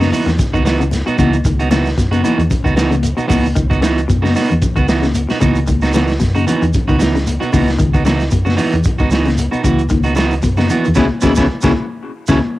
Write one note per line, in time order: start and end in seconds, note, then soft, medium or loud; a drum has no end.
0.00 0.10 F#2 medium
0.00 0.20 C#3 medium
0.00 0.12 B3 soft
0.00 0.12 D#4 medium
0.00 0.12 F#4 medium
0.00 snare soft
0.00 high conga medium
0.00 shekere soft
0.12 0.29 E3 medium
0.12 0.30 B3 medium
0.12 0.30 D#4 medium
0.12 0.30 F#4 medium
0.12 open hi-hat medium
0.12 high conga medium
0.12 low conga medium
0.12 shekere medium
0.26 0.37 E2 medium
0.26 0.36 D#3 medium
0.26 snare soft
0.26 closed hi-hat soft
0.26 shekere soft
0.39 muted fingered electric bass stroke soft
0.39 kick loud
0.39 snare soft
0.39 closed hi-hat medium
0.39 low conga medium
0.39 shekere medium
0.53 1.01 C#2 medium
0.53 0.73 D#3 medium
0.53 0.64 B3 soft
0.53 0.64 D#4 soft
0.53 0.65 F#4 medium
0.53 kick medium
0.53 shekere soft
0.65 0.82 E3 medium
0.65 0.82 B3 medium
0.65 0.82 D#4 medium
0.65 0.83 F#4 medium
0.65 snare medium
0.65 closed hi-hat medium
0.65 shekere medium
0.80 1.00 C#3 medium
0.80 closed hi-hat soft
0.80 shekere soft
0.91 snare soft
0.91 closed hi-hat medium
0.91 high conga medium
0.91 shekere medium
1.06 1.15 B2 medium
1.06 1.18 B3 soft
1.06 1.18 D#4 medium
1.06 1.18 F#4 medium
1.06 muted fingered electric bass stroke soft
1.06 closed hi-hat soft
1.06 shekere soft
1.18 1.43 C#2 medium
1.18 1.39 C#3 medium
1.18 1.35 E3 medium
1.18 1.36 B3 medium
1.18 1.36 D#4 medium
1.18 1.36 F#4 medium
1.18 kick medium
1.18 closed hi-hat soft
1.18 high conga medium
1.18 shekere medium
1.33 closed hi-hat soft
1.33 shekere soft
1.45 1.93 C#2 loud
1.45 1.65 D#3 medium
1.45 kick medium
1.45 closed hi-hat medium
1.45 shekere medium
1.59 1.70 B3 soft
1.59 1.70 D#4 medium
1.59 1.70 F#4 medium
1.59 closed hi-hat soft
1.59 shekere soft
1.71 1.91 C#3 medium
1.71 1.88 E3 medium
1.71 1.88 B3 medium
1.71 1.88 D#4 medium
1.71 1.89 F#4 medium
1.71 snare medium
1.71 closed hi-hat soft
1.71 high conga medium
1.71 shekere medium
1.85 snare soft
1.85 closed hi-hat soft
1.85 shekere soft
1.98 2.22 F#2 loud
1.98 2.09 B2 medium
1.98 kick medium
1.98 snare soft
1.98 closed hi-hat medium
1.98 shekere medium
2.11 2.32 C#3 medium
2.11 2.23 B3 medium
2.11 2.23 D#4 medium
2.11 2.24 F#4 medium
2.11 closed hi-hat soft
2.11 high conga medium
2.11 shekere soft
2.24 2.41 E3 medium
2.24 2.41 B3 medium
2.24 2.41 D#4 medium
2.24 2.42 F#4 medium
2.24 closed hi-hat medium
2.24 high conga medium
2.24 low conga medium
2.24 shekere medium
2.38 2.49 E2 medium
2.38 2.47 D#3 medium
2.38 closed hi-hat soft
2.38 shekere soft
2.50 muted fingered electric bass stroke soft
2.50 kick loud
2.50 closed hi-hat medium
2.50 low conga medium
2.50 shekere medium
2.64 3.13 C#2 medium
2.64 2.84 D#3 medium
2.64 2.75 B3 medium
2.64 2.75 D#4 medium
2.64 2.76 F#4 medium
2.64 kick medium
2.64 shekere soft
2.76 2.94 E3 medium
2.76 2.94 B3 medium
2.76 2.94 D#4 medium
2.76 2.94 F#4 medium
2.76 snare medium
2.76 closed hi-hat medium
2.76 low conga medium
2.76 shekere medium
2.91 3.11 C#3 medium
2.91 closed hi-hat soft
2.91 high conga medium
2.91 shekere soft
3.03 closed hi-hat medium
3.03 high conga medium
3.03 shekere medium
3.17 3.26 B2 medium
3.17 3.27 B3 soft
3.17 3.27 D#4 soft
3.17 3.28 F#4 soft
3.17 muted fingered electric bass stroke soft
3.17 closed hi-hat soft
3.17 shekere soft
3.28 3.54 C#2 medium
3.28 3.49 C#3 medium
3.28 3.46 E3 medium
3.28 3.46 B3 medium
3.28 3.46 D#4 medium
3.28 3.46 F#4 medium
3.28 kick medium
3.28 open hi-hat medium
3.28 high conga medium
3.28 shekere medium
3.45 shekere soft
3.55 4.04 C#2 medium
3.55 3.75 D#3 medium
3.55 kick medium
3.55 closed hi-hat medium
3.55 shekere medium
3.70 3.81 B3 soft
3.70 3.81 D#4 soft
3.70 3.82 F#4 medium
3.70 kick medium
3.70 closed hi-hat soft
3.70 shekere soft
3.81 4.02 C#3 medium
3.81 3.99 E3 medium
3.81 4.00 B3 medium
3.81 4.00 D#4 medium
3.81 4.00 F#4 medium
3.81 snare medium
3.81 closed hi-hat medium
3.81 high conga medium
3.81 shekere medium
3.98 closed hi-hat soft
3.98 shekere soft
4.08 4.34 F#2 medium
4.08 4.19 B2 medium
4.08 kick medium
4.08 closed hi-hat medium
4.08 shekere medium
4.22 4.43 C#3 medium
4.22 4.35 B3 soft
4.22 4.35 D#4 medium
4.22 4.35 F#4 medium
4.22 snare soft
4.22 high conga medium
4.22 shekere soft
4.35 4.53 B3 medium
4.35 4.53 D#4 medium
4.35 4.53 F#4 medium
4.35 snare soft
4.35 open hi-hat medium
4.35 shekere medium
4.49 4.62 E2 medium
4.49 4.58 D#3 medium
4.49 closed hi-hat soft
4.49 low conga medium
4.49 shekere soft
4.62 kick medium
4.62 closed hi-hat medium
4.62 low conga medium
4.62 shekere medium
4.76 5.25 C#2 medium
4.76 4.96 D#3 medium
4.76 4.87 B3 medium
4.76 4.88 F#4 medium
4.76 muted clean electric guitar stroke soft
4.76 kick medium
4.76 shekere soft
4.88 5.06 E3 medium
4.88 5.06 B3 medium
4.88 5.06 D#4 medium
4.88 5.06 F#4 medium
4.88 snare medium
4.88 closed hi-hat soft
4.88 shekere medium
5.02 5.22 C#3 medium
5.02 snare soft
5.02 closed hi-hat soft
5.02 high conga medium
5.02 shekere soft
5.14 closed hi-hat medium
5.14 high conga medium
5.14 shekere medium
5.29 5.38 B2 medium
5.29 5.40 B3 soft
5.29 5.40 D#4 medium
5.29 5.40 F#4 medium
5.29 muted fingered electric bass stroke soft
5.29 snare soft
5.29 closed hi-hat soft
5.29 shekere soft
5.40 5.66 C#2 medium
5.40 5.60 C#3 medium
5.40 5.58 E3 medium
5.40 5.58 B3 medium
5.40 5.58 D#4 medium
5.40 5.59 F#4 medium
5.40 kick medium
5.40 closed hi-hat soft
5.40 high conga medium
5.40 shekere medium
5.55 closed hi-hat soft
5.55 shekere soft
5.67 6.16 C#2 medium
5.67 5.87 D#3 medium
5.67 kick medium
5.67 closed hi-hat medium
5.67 high conga medium
5.67 shekere medium
5.81 5.93 B3 soft
5.81 5.94 D#4 medium
5.81 5.94 F#4 medium
5.81 snare soft
5.81 closed hi-hat soft
5.81 shekere soft
5.93 6.14 C#3 medium
5.93 6.11 E3 medium
5.93 6.11 B3 medium
5.93 6.12 D#4 medium
5.93 6.12 F#4 medium
5.93 snare medium
5.93 closed hi-hat medium
5.93 high conga medium
5.93 shekere medium
6.08 snare soft
6.08 closed hi-hat soft
6.08 shekere soft
6.20 6.45 F#2 loud
6.20 6.31 B2 medium
6.20 kick medium
6.20 snare soft
6.20 closed hi-hat medium
6.20 shekere medium
6.35 6.55 C#3 medium
6.35 6.46 D#4 soft
6.35 6.46 F#4 medium
6.35 muted clean electric guitar stroke soft
6.35 closed hi-hat soft
6.35 high conga medium
6.35 shekere soft
6.47 6.64 E3 medium
6.47 6.64 B3 medium
6.47 6.65 D#4 medium
6.47 6.65 F#4 medium
6.47 closed hi-hat medium
6.47 low conga medium
6.47 shekere medium
6.62 6.73 E2 medium
6.62 6.71 D#3 medium
6.62 closed hi-hat soft
6.62 shekere soft
6.73 kick medium
6.73 closed hi-hat medium
6.73 low conga medium
6.73 shekere medium
6.88 7.37 C#2 medium
6.88 7.08 D#3 medium
6.88 6.98 B3 medium
6.88 6.98 D#4 soft
6.88 7.00 F#4 medium
6.88 kick medium
6.88 shekere soft
6.99 7.16 E3 medium
6.99 7.17 B3 medium
6.99 7.17 D#4 medium
6.99 closed hi-hat soft
6.99 low conga medium
6.99 shekere medium
7.03 snare medium
7.15 7.35 C#3 medium
7.15 snare soft
7.15 closed hi-hat soft
7.15 shekere soft
7.27 closed hi-hat medium
7.27 high conga medium
7.27 shekere medium
7.40 7.50 B2 medium
7.40 7.52 B3 soft
7.40 7.52 D#4 soft
7.40 7.53 F#4 medium
7.40 muted fingered electric bass stroke soft
7.40 closed hi-hat soft
7.40 shekere soft
7.52 7.77 C#2 medium
7.52 7.73 C#3 medium
7.52 7.70 E3 medium
7.52 7.70 B3 medium
7.52 7.70 D#4 medium
7.52 7.71 F#4 medium
7.52 kick medium
7.52 open hi-hat medium
7.52 high conga medium
7.52 shekere medium
7.68 snare soft
7.68 shekere soft
7.79 8.28 C#2 loud
7.79 7.99 D#3 medium
7.79 kick medium
7.79 closed hi-hat medium
7.79 shekere medium
7.94 8.04 B3 soft
7.94 8.05 D#4 medium
7.94 8.05 F#4 medium
7.94 kick medium
7.94 closed hi-hat soft
7.94 shekere soft
8.05 8.25 C#3 medium
8.05 8.23 E3 medium
8.05 8.23 B3 medium
8.05 8.23 D#4 medium
8.05 8.23 F#4 medium
8.05 snare medium
8.05 closed hi-hat soft
8.05 high conga medium
8.05 shekere medium
8.19 snare soft
8.19 closed hi-hat soft
8.19 shekere soft
8.31 8.56 F#2 loud
8.31 8.43 B2 medium
8.31 kick medium
8.31 closed hi-hat medium
8.31 shekere medium
8.45 8.66 C#3 medium
8.45 8.56 B3 soft
8.45 8.56 F#4 medium
8.45 snare soft
8.45 high conga medium
8.45 shekere soft
8.57 8.75 E3 medium
8.57 8.75 B3 medium
8.57 8.75 D#4 medium
8.57 8.75 F#4 medium
8.57 open hi-hat medium
8.57 low conga medium
8.57 shekere medium
8.73 8.84 E2 medium
8.73 8.82 D#3 medium
8.73 closed hi-hat soft
8.73 shekere soft
8.84 muted fingered electric bass stroke soft
8.84 kick medium
8.84 closed hi-hat medium
8.84 low conga medium
8.84 shekere medium
8.98 9.48 C#2 medium
8.98 9.20 D#3 medium
8.98 9.11 B3 soft
8.98 9.11 D#4 medium
8.98 9.11 F#4 medium
8.98 kick medium
8.98 shekere soft
9.11 9.28 E3 medium
9.11 9.29 B3 medium
9.11 9.29 D#4 medium
9.11 9.29 F#4 medium
9.11 snare medium
9.11 closed hi-hat medium
9.11 shekere medium
9.25 9.45 C#3 medium
9.25 snare soft
9.25 closed hi-hat soft
9.25 high conga medium
9.25 shekere soft
9.38 closed hi-hat medium
9.38 high conga medium
9.38 shekere medium
9.51 9.61 B2 medium
9.51 9.63 B3 soft
9.51 9.64 D#4 soft
9.51 9.63 F#4 medium
9.51 muted fingered electric bass stroke soft
9.51 closed hi-hat soft
9.51 shekere soft
9.63 9.88 C#2 medium
9.63 9.84 C#3 medium
9.63 9.81 E3 medium
9.63 9.81 F#4 medium
9.63 muted clean electric guitar stroke medium
9.63 kick medium
9.63 closed hi-hat soft
9.63 high conga medium
9.63 shekere medium
9.79 closed hi-hat soft
9.79 shekere soft
9.89 10.39 C#2 medium
9.89 10.10 D#3 medium
9.89 kick medium
9.89 closed hi-hat medium
9.89 high conga medium
9.89 shekere medium
10.03 10.15 B3 soft
10.03 10.15 D#4 medium
10.03 10.16 F#4 medium
10.03 closed hi-hat soft
10.03 shekere soft
10.15 10.36 C#3 medium
10.15 10.34 E3 medium
10.15 10.33 B3 medium
10.15 10.34 D#4 medium
10.15 10.34 F#4 medium
10.15 snare medium
10.15 closed hi-hat medium
10.15 high conga medium
10.15 shekere medium
10.31 closed hi-hat soft
10.31 shekere soft
10.42 10.68 F#2 loud
10.42 10.54 B2 medium
10.42 kick medium
10.42 closed hi-hat medium
10.42 shekere medium
10.57 10.78 C#3 medium
10.57 10.69 B3 soft
10.57 10.70 D#4 medium
10.57 10.70 F#4 medium
10.57 snare soft
10.57 closed hi-hat soft
10.57 high conga medium
10.57 shekere soft
10.69 10.87 E3 medium
10.69 10.87 B3 medium
10.69 10.87 F#4 medium
10.69 closed hi-hat soft
10.69 low conga medium
10.69 shekere medium
10.85 10.97 E2 medium
10.85 10.94 D#3 medium
10.85 closed hi-hat soft
10.85 shekere soft
10.95 11.08 C#2 medium
10.95 11.06 B2 medium
10.95 11.06 C#3 medium
10.95 11.06 E3 medium
10.95 11.05 B3 medium
10.95 11.05 C#4 medium
10.95 11.05 E4 medium
10.95 kick medium
10.95 snare medium
10.95 high conga medium
10.95 shekere medium
11.21 11.34 C#2 medium
11.21 11.32 B2 medium
11.21 11.32 C#3 medium
11.21 11.32 E3 medium
11.21 11.31 B3 medium
11.21 11.31 C#4 medium
11.21 11.32 E4 medium
11.21 kick medium
11.21 snare medium
11.21 high conga loud
11.21 shekere medium
11.35 11.46 C#2 medium
11.35 11.45 B2 medium
11.35 11.45 C#3 medium
11.35 11.45 E3 medium
11.35 11.45 B3 medium
11.35 11.45 C#4 loud
11.35 11.45 E4 medium
11.35 kick medium
11.35 snare medium
11.35 high conga medium
11.35 shekere loud
11.62 11.73 C#2 medium
11.62 11.71 B2 medium
11.62 11.71 C#3 medium
11.62 11.71 E3 medium
11.62 11.71 B3 medium
11.62 11.72 C#4 medium
11.62 11.71 E4 medium
11.62 kick medium
11.62 snare medium
11.62 high conga loud
11.62 shekere medium
12.27 12.39 C#2 medium
12.27 12.38 B2 medium
12.27 12.38 C#3 medium
12.27 12.38 E3 medium
12.27 12.38 B3 medium
12.27 12.38 C#4 medium
12.27 12.38 E4 medium
12.27 kick medium
12.27 snare medium
12.27 high conga medium
12.27 shekere medium